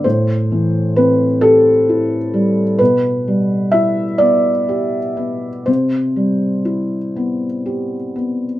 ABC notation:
X:1
M:6/8
L:1/8
Q:3/8=42
K:Clyd
V:1 name="Felt piano"
c2 B A3 | B2 e d3 | c4- c z |]
V:2 name="Felt piano"
A,, E, C G E G, | B,, G, E B, G B, | C, G, E B, G B, |]